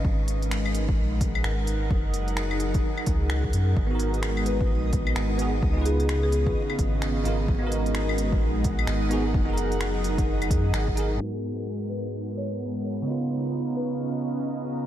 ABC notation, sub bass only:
X:1
M:4/4
L:1/8
Q:"Swing 16ths" 1/4=129
K:G#dor
V:1 name="Sub bass" clef=bass
G,,,4 A,,,2 G,,,2 | F,,,4 z C,,2 F,, | G,,,4 A,,,2 G,,,2 | C,,4 z G,,,2 G,,, |
G,,,4 A,,,2 G,,,2 | F,,,4- F,,, F,, G,,,2 | z8 | z8 |]